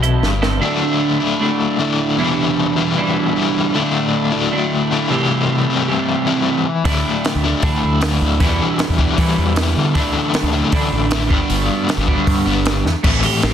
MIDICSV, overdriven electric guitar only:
0, 0, Header, 1, 2, 480
1, 0, Start_track
1, 0, Tempo, 389864
1, 768, Time_signature, 4, 2, 24, 8
1, 7485, Tempo, 386847
1, 16737, End_track
2, 0, Start_track
2, 0, Title_t, "Overdriven electric guitar"
2, 0, Program_c, 0, 29
2, 0, Note_on_c, 0, 47, 92
2, 283, Note_off_c, 0, 47, 0
2, 285, Note_on_c, 0, 43, 85
2, 757, Note_on_c, 0, 50, 88
2, 760, Note_off_c, 0, 43, 0
2, 767, Note_on_c, 0, 57, 90
2, 773, Note_on_c, 0, 62, 106
2, 787, Note_on_c, 0, 64, 99
2, 1470, Note_off_c, 0, 50, 0
2, 1473, Note_off_c, 0, 64, 0
2, 1475, Note_off_c, 0, 57, 0
2, 1478, Note_on_c, 0, 64, 77
2, 1485, Note_off_c, 0, 62, 0
2, 1490, Note_on_c, 0, 62, 69
2, 1494, Note_on_c, 0, 57, 76
2, 1505, Note_on_c, 0, 50, 67
2, 2181, Note_off_c, 0, 50, 0
2, 2192, Note_off_c, 0, 57, 0
2, 2196, Note_on_c, 0, 50, 74
2, 2206, Note_on_c, 0, 57, 71
2, 2209, Note_off_c, 0, 62, 0
2, 2210, Note_off_c, 0, 64, 0
2, 2214, Note_on_c, 0, 62, 77
2, 2215, Note_on_c, 0, 64, 76
2, 2668, Note_off_c, 0, 50, 0
2, 2672, Note_on_c, 0, 52, 95
2, 2675, Note_off_c, 0, 57, 0
2, 2680, Note_on_c, 0, 55, 93
2, 2687, Note_off_c, 0, 62, 0
2, 2692, Note_off_c, 0, 64, 0
2, 2692, Note_on_c, 0, 59, 93
2, 2697, Note_on_c, 0, 64, 103
2, 3393, Note_off_c, 0, 55, 0
2, 3399, Note_off_c, 0, 59, 0
2, 3401, Note_off_c, 0, 64, 0
2, 3406, Note_on_c, 0, 64, 79
2, 3422, Note_on_c, 0, 59, 75
2, 3424, Note_off_c, 0, 52, 0
2, 3429, Note_on_c, 0, 52, 67
2, 3432, Note_on_c, 0, 55, 74
2, 4124, Note_off_c, 0, 59, 0
2, 4128, Note_off_c, 0, 55, 0
2, 4132, Note_off_c, 0, 52, 0
2, 4137, Note_on_c, 0, 52, 72
2, 4145, Note_on_c, 0, 55, 85
2, 4149, Note_on_c, 0, 59, 76
2, 4150, Note_off_c, 0, 64, 0
2, 4155, Note_on_c, 0, 64, 80
2, 4593, Note_off_c, 0, 52, 0
2, 4598, Note_on_c, 0, 50, 82
2, 4601, Note_off_c, 0, 55, 0
2, 4606, Note_on_c, 0, 57, 88
2, 4607, Note_off_c, 0, 59, 0
2, 4617, Note_on_c, 0, 62, 103
2, 4620, Note_off_c, 0, 64, 0
2, 4625, Note_on_c, 0, 64, 96
2, 5311, Note_off_c, 0, 50, 0
2, 5313, Note_off_c, 0, 64, 0
2, 5318, Note_on_c, 0, 64, 88
2, 5320, Note_off_c, 0, 62, 0
2, 5330, Note_off_c, 0, 57, 0
2, 5334, Note_on_c, 0, 62, 83
2, 5335, Note_on_c, 0, 57, 81
2, 5345, Note_on_c, 0, 50, 70
2, 6023, Note_off_c, 0, 50, 0
2, 6038, Note_off_c, 0, 62, 0
2, 6038, Note_on_c, 0, 50, 76
2, 6051, Note_off_c, 0, 57, 0
2, 6056, Note_on_c, 0, 57, 70
2, 6059, Note_off_c, 0, 64, 0
2, 6060, Note_on_c, 0, 62, 70
2, 6064, Note_on_c, 0, 64, 87
2, 6269, Note_off_c, 0, 50, 0
2, 6279, Note_on_c, 0, 48, 86
2, 6281, Note_off_c, 0, 62, 0
2, 6281, Note_on_c, 0, 52, 83
2, 6288, Note_off_c, 0, 57, 0
2, 6293, Note_on_c, 0, 55, 93
2, 6301, Note_on_c, 0, 60, 97
2, 6302, Note_off_c, 0, 64, 0
2, 6307, Note_on_c, 0, 64, 108
2, 6977, Note_off_c, 0, 48, 0
2, 6992, Note_on_c, 0, 48, 67
2, 6995, Note_off_c, 0, 55, 0
2, 6999, Note_off_c, 0, 60, 0
2, 7005, Note_off_c, 0, 52, 0
2, 7010, Note_on_c, 0, 52, 68
2, 7016, Note_on_c, 0, 55, 80
2, 7017, Note_off_c, 0, 64, 0
2, 7020, Note_on_c, 0, 60, 74
2, 7022, Note_on_c, 0, 64, 73
2, 7704, Note_off_c, 0, 48, 0
2, 7712, Note_off_c, 0, 60, 0
2, 7714, Note_off_c, 0, 64, 0
2, 7717, Note_off_c, 0, 55, 0
2, 7719, Note_on_c, 0, 64, 73
2, 7727, Note_on_c, 0, 60, 75
2, 7735, Note_on_c, 0, 55, 68
2, 7736, Note_off_c, 0, 52, 0
2, 7741, Note_on_c, 0, 52, 64
2, 7747, Note_on_c, 0, 48, 67
2, 8194, Note_off_c, 0, 60, 0
2, 8198, Note_off_c, 0, 55, 0
2, 8204, Note_off_c, 0, 48, 0
2, 8447, Note_off_c, 0, 52, 0
2, 8452, Note_on_c, 0, 50, 98
2, 8458, Note_on_c, 0, 57, 90
2, 8464, Note_on_c, 0, 62, 89
2, 8472, Note_off_c, 0, 64, 0
2, 8477, Note_on_c, 0, 64, 109
2, 9158, Note_off_c, 0, 50, 0
2, 9161, Note_off_c, 0, 57, 0
2, 9164, Note_off_c, 0, 64, 0
2, 9169, Note_on_c, 0, 64, 78
2, 9179, Note_off_c, 0, 62, 0
2, 9184, Note_on_c, 0, 62, 77
2, 9189, Note_on_c, 0, 57, 68
2, 9201, Note_on_c, 0, 50, 62
2, 9862, Note_off_c, 0, 50, 0
2, 9875, Note_off_c, 0, 57, 0
2, 9877, Note_on_c, 0, 50, 75
2, 9885, Note_off_c, 0, 62, 0
2, 9890, Note_on_c, 0, 57, 65
2, 9890, Note_on_c, 0, 62, 70
2, 9896, Note_off_c, 0, 64, 0
2, 9901, Note_on_c, 0, 64, 83
2, 10351, Note_off_c, 0, 50, 0
2, 10358, Note_off_c, 0, 57, 0
2, 10372, Note_on_c, 0, 52, 94
2, 10380, Note_on_c, 0, 55, 96
2, 10382, Note_off_c, 0, 62, 0
2, 10387, Note_on_c, 0, 59, 88
2, 10389, Note_off_c, 0, 64, 0
2, 10394, Note_on_c, 0, 64, 94
2, 11079, Note_off_c, 0, 59, 0
2, 11080, Note_off_c, 0, 64, 0
2, 11083, Note_off_c, 0, 55, 0
2, 11085, Note_on_c, 0, 64, 80
2, 11094, Note_on_c, 0, 59, 74
2, 11102, Note_on_c, 0, 55, 75
2, 11110, Note_off_c, 0, 52, 0
2, 11115, Note_on_c, 0, 52, 60
2, 11796, Note_off_c, 0, 64, 0
2, 11800, Note_off_c, 0, 59, 0
2, 11804, Note_off_c, 0, 55, 0
2, 11805, Note_off_c, 0, 52, 0
2, 11820, Note_on_c, 0, 52, 66
2, 11823, Note_on_c, 0, 55, 76
2, 11842, Note_on_c, 0, 59, 77
2, 11843, Note_on_c, 0, 64, 80
2, 12281, Note_off_c, 0, 52, 0
2, 12284, Note_off_c, 0, 55, 0
2, 12286, Note_on_c, 0, 50, 89
2, 12294, Note_off_c, 0, 59, 0
2, 12295, Note_off_c, 0, 64, 0
2, 12301, Note_on_c, 0, 52, 92
2, 12304, Note_on_c, 0, 57, 90
2, 12317, Note_on_c, 0, 64, 98
2, 12991, Note_off_c, 0, 64, 0
2, 12996, Note_off_c, 0, 50, 0
2, 13003, Note_off_c, 0, 52, 0
2, 13005, Note_off_c, 0, 57, 0
2, 13006, Note_on_c, 0, 64, 84
2, 13017, Note_on_c, 0, 57, 85
2, 13025, Note_on_c, 0, 52, 76
2, 13035, Note_on_c, 0, 50, 68
2, 13713, Note_off_c, 0, 50, 0
2, 13715, Note_off_c, 0, 64, 0
2, 13721, Note_off_c, 0, 57, 0
2, 13725, Note_off_c, 0, 52, 0
2, 13728, Note_on_c, 0, 50, 76
2, 13739, Note_on_c, 0, 52, 71
2, 13745, Note_on_c, 0, 57, 78
2, 13749, Note_on_c, 0, 64, 88
2, 13956, Note_off_c, 0, 50, 0
2, 13959, Note_on_c, 0, 43, 87
2, 13962, Note_off_c, 0, 52, 0
2, 13965, Note_off_c, 0, 57, 0
2, 13967, Note_off_c, 0, 64, 0
2, 13969, Note_on_c, 0, 50, 102
2, 13972, Note_on_c, 0, 55, 98
2, 13979, Note_on_c, 0, 59, 96
2, 13982, Note_on_c, 0, 62, 100
2, 14663, Note_off_c, 0, 43, 0
2, 14668, Note_off_c, 0, 50, 0
2, 14674, Note_off_c, 0, 55, 0
2, 14677, Note_on_c, 0, 43, 79
2, 14680, Note_off_c, 0, 59, 0
2, 14682, Note_off_c, 0, 62, 0
2, 14683, Note_on_c, 0, 50, 80
2, 14689, Note_on_c, 0, 55, 80
2, 14700, Note_on_c, 0, 59, 74
2, 14705, Note_on_c, 0, 62, 81
2, 15375, Note_off_c, 0, 62, 0
2, 15386, Note_off_c, 0, 59, 0
2, 15388, Note_off_c, 0, 43, 0
2, 15390, Note_off_c, 0, 55, 0
2, 15390, Note_on_c, 0, 62, 85
2, 15391, Note_off_c, 0, 50, 0
2, 15401, Note_on_c, 0, 59, 80
2, 15405, Note_on_c, 0, 55, 68
2, 15408, Note_on_c, 0, 50, 78
2, 15413, Note_on_c, 0, 43, 62
2, 15864, Note_off_c, 0, 62, 0
2, 15870, Note_off_c, 0, 59, 0
2, 15871, Note_off_c, 0, 55, 0
2, 15873, Note_off_c, 0, 50, 0
2, 15875, Note_off_c, 0, 43, 0
2, 16114, Note_on_c, 0, 45, 93
2, 16129, Note_on_c, 0, 57, 91
2, 16132, Note_on_c, 0, 52, 101
2, 16141, Note_on_c, 0, 60, 106
2, 16148, Note_on_c, 0, 64, 103
2, 16349, Note_off_c, 0, 64, 0
2, 16354, Note_on_c, 0, 64, 71
2, 16364, Note_off_c, 0, 60, 0
2, 16369, Note_on_c, 0, 60, 67
2, 16376, Note_off_c, 0, 57, 0
2, 16381, Note_on_c, 0, 57, 64
2, 16602, Note_off_c, 0, 52, 0
2, 16607, Note_on_c, 0, 52, 72
2, 16609, Note_off_c, 0, 57, 0
2, 16614, Note_on_c, 0, 57, 77
2, 16616, Note_off_c, 0, 60, 0
2, 16621, Note_on_c, 0, 60, 78
2, 16622, Note_off_c, 0, 64, 0
2, 16627, Note_on_c, 0, 64, 79
2, 16737, Note_off_c, 0, 45, 0
2, 16737, Note_off_c, 0, 52, 0
2, 16737, Note_off_c, 0, 57, 0
2, 16737, Note_off_c, 0, 60, 0
2, 16737, Note_off_c, 0, 64, 0
2, 16737, End_track
0, 0, End_of_file